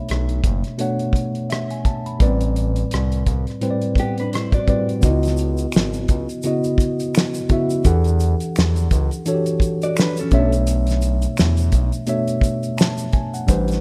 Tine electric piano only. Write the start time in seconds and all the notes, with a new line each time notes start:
Already playing: B2 A3 D4 C#5 E5 B5
0.78 B2 A3 D4 C#5 F#5
1.50 E5
1.71 G#5
1.86 A5
2.06 B5
2.19 A2 G3 B3 B4 D5
2.27 C4
3.61 A2 G3 C4 B4 C5
3.71 D5
4.67 A2 G3 C4 B4 D5
5.01 C#3 B3 D#4 F#4 D#5
5.09 E4
6.44 C#3 B3 E4 F#4 D#5
7.49 C#3 B3 E4 F#4 E5
7.84 E3 D4 G4 A4 F#5
9.25 E3 D4 F#4 A4 C#5
9.34 G4
10.31 B2 A3 C#4 C#5 E5
10.39 D4
12.07 B2 A3 D4 C#5 E5
12.78 A5
13.13 G#5
13.34 F#5
13.46 A2 G3 D4 B4 C5